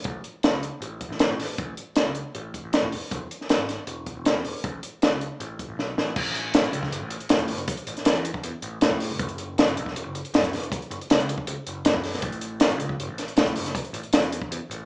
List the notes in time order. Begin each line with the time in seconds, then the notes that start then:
0.04 A1, kick, closed hi-hat
0.24 closed hi-hat
0.43 snare, closed hi-hat
0.53 C#2
0.63 closed hi-hat
0.81 A1, closed hi-hat
1.01 kick, closed hi-hat
1.09 A1, snare
1.19 snare, closed hi-hat
1.29 A2
1.38 A1, snare, open hi-hat
1.58 A1, kick, closed hi-hat
1.77 closed hi-hat
1.96 snare, closed hi-hat
2.06 C#2
2.15 closed hi-hat
2.35 A1, closed hi-hat
2.54 kick, closed hi-hat
2.64 A1
2.73 snare, closed hi-hat
2.83 A2, kick
2.92 E1, open hi-hat
3.11 E1, kick, closed hi-hat
3.31 closed hi-hat
3.41 snare
3.49 snare, closed hi-hat
3.58 G#1
3.69 snare, closed hi-hat
3.87 E1, closed hi-hat
4.06 kick, closed hi-hat
4.15 E1
4.25 snare, closed hi-hat
4.34 E2
4.44 E1, open hi-hat
4.64 A1, kick, closed hi-hat
4.83 closed hi-hat
5.02 snare, closed hi-hat
5.12 C#2
5.21 closed hi-hat
5.40 A1, closed hi-hat
5.59 kick, closed hi-hat
5.69 A1
5.78 B1, snare
5.97 A1, snare
6.16 A1, kick, crash
6.26 closed hi-hat
6.35 closed hi-hat
6.54 snare, closed hi-hat
6.64 A1, closed hi-hat
6.73 C#2, closed hi-hat
6.83 kick, snare
6.92 F#1, closed hi-hat
7.02 A1
7.11 closed hi-hat
7.20 closed hi-hat
7.29 A2, snare, closed hi-hat
7.39 kick, closed hi-hat
7.48 F#1, open hi-hat
7.58 closed hi-hat
7.68 kick, closed hi-hat
7.77 closed hi-hat
7.87 A1, closed hi-hat
7.97 snare, closed hi-hat
8.05 E2, snare, closed hi-hat
8.15 E2, closed hi-hat
8.25 closed hi-hat
8.34 kick
8.43 E2, closed hi-hat
8.62 A1, closed hi-hat
8.81 A2, snare, closed hi-hat
8.91 kick
9.00 open hi-hat
9.09 G1
9.19 F#1, kick, closed hi-hat
9.29 closed hi-hat
9.38 closed hi-hat
9.58 snare, closed hi-hat
9.67 F#1, closed hi-hat
9.77 B1, closed hi-hat
9.86 kick, snare
9.96 E1, closed hi-hat
10.05 F#1
10.15 closed hi-hat
10.25 closed hi-hat
10.34 F#2, snare, closed hi-hat
10.43 kick, closed hi-hat
10.53 E1, snare, open hi-hat
10.63 closed hi-hat
10.72 kick, closed hi-hat
10.82 closed hi-hat
10.91 F#1, closed hi-hat
11.01 closed hi-hat
11.10 C#2, snare, closed hi-hat
11.19 C#2, closed hi-hat
11.29 closed hi-hat
11.38 kick
11.47 C#2, closed hi-hat
11.67 F#1, closed hi-hat
11.85 F#2, snare, closed hi-hat
11.94 kick
12.04 snare, open hi-hat
12.14 C#2, snare
12.22 A1, kick, closed hi-hat
12.32 closed hi-hat
12.41 closed hi-hat
12.60 snare, closed hi-hat
12.70 A1, closed hi-hat
12.80 C#2, closed hi-hat
12.89 kick
13.00 F#1, closed hi-hat
13.07 A1
13.18 snare, closed hi-hat
13.28 closed hi-hat
13.37 A2, snare, closed hi-hat
13.46 kick, closed hi-hat
13.54 F#1, open hi-hat
13.66 snare, closed hi-hat
13.75 kick, closed hi-hat
13.84 closed hi-hat
13.93 A1, closed hi-hat
14.03 closed hi-hat
14.13 E2, snare, closed hi-hat
14.23 E2, closed hi-hat
14.32 closed hi-hat
14.42 kick
14.51 E2, closed hi-hat
14.70 A1, closed hi-hat